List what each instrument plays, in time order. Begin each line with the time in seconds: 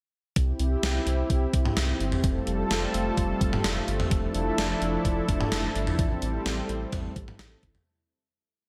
0.36 analog synth bass C2, analog synth pad C4 E4 G4, kick, closed hi-hat
0.59 analog synth bass C2, closed hi-hat
0.83 analog synth bass C2, snare, closed hi-hat
1.07 analog synth bass C2, closed hi-hat
1.30 analog synth bass C2, kick, closed hi-hat
1.53 analog synth bass C2, kick, closed hi-hat
1.66 mid tom
1.77 analog synth bass C2, snare, closed hi-hat
2.00 analog synth bass G1, closed hi-hat
2.12 mid tom
2.24 analog synth bass F1, analog synth pad G3 A3 F4 A4, kick, closed hi-hat
2.47 analog synth bass F1, closed hi-hat
2.71 analog synth bass F1, snare, closed hi-hat
2.94 analog synth bass F1, closed hi-hat
3.17 analog synth bass F1, kick, closed hi-hat
3.41 analog synth bass F1, kick, closed hi-hat
3.53 mid tom
3.64 analog synth bass F1, snare, closed hi-hat
3.88 analog synth bass G1, closed hi-hat
4.00 mid tom
4.11 analog synth bass F1, analog synth pad F3 D4 E4 A4, kick, closed hi-hat
4.35 analog synth bass F1, closed hi-hat
4.58 analog synth bass F1, snare, closed hi-hat
4.82 analog synth bass F1, closed hi-hat
5.05 analog synth bass F1, kick, closed hi-hat
5.29 analog synth bass F1, kick, closed hi-hat
5.41 mid tom
5.52 analog synth bass F1, snare, closed hi-hat
5.75 analog synth bass G1, closed hi-hat
5.87 mid tom
5.99 analog synth bass A1, analog synth pad G3 C4, kick, closed hi-hat
6.22 analog synth bass A1, closed hi-hat
6.46 analog synth bass A1, snare, closed hi-hat
6.69 analog synth bass A1, closed hi-hat
6.92 analog synth bass A1, kick, closed hi-hat, mid tom
7.16 analog synth bass A1, kick, closed hi-hat
7.28 mid tom
7.39 analog synth bass A1, snare, closed hi-hat
7.63 analog synth bass G1, kick, closed hi-hat
7.75 mid tom